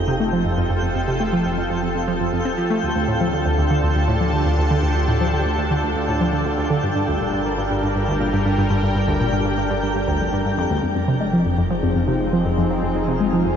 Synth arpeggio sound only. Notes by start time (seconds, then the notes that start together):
0.08 C3
0.20 A3
0.33 F3
0.45 F2
0.58 F2
0.70 F2
0.83 F2
0.95 F2
1.08 C3
1.20 A3
1.33 F3
1.45 F2
1.58 F2
1.70 F2
1.83 F2
1.95 F2
2.08 F3
2.20 F2
2.33 F2
2.45 C4
2.58 F3
2.70 A3
2.83 D2
2.96 D2
3.08 A2
3.21 F3
3.33 D3
3.46 D2
3.58 D2
3.71 D3
3.83 D2
3.96 D2
4.08 A2
4.21 F3
4.33 D3
4.46 D2
4.58 D2
4.71 D3
4.83 D2
4.96 D2
5.08 A2
5.21 F3
5.33 D3
5.46 D2
5.58 D2
5.71 D3
5.83 D2
5.96 D2
6.08 A2
6.21 F3
6.33 D3
6.46 D2
6.58 D2
6.70 D3
6.83 G2
6.96 G2
7.08 D2
7.21 A#2
7.33 G2
7.46 G2
7.58 G2
7.71 G2
7.83 G2
7.96 G2
8.08 D2
8.21 A#2
8.33 G2
8.46 G2
8.58 G2
8.70 G2
8.83 G2
8.95 G2
9.08 D2
9.20 A#2
9.33 G2
9.45 G2
9.58 G2
9.70 G2
9.83 G2
9.95 G2
10.08 D2
10.20 F2
10.33 G2
10.45 G2
10.58 F2
10.70 D2
10.83 F2
10.95 F2
11.08 C3
11.20 G#3
11.33 F3
11.45 F2
11.58 F2
11.70 F3
11.83 F2
11.96 F2
12.08 C3
12.20 G#3
12.33 F3
12.45 F2
12.58 F2
12.70 F3
12.83 F2
12.95 F2
13.08 C3
13.20 G#3
13.33 F3
13.45 F2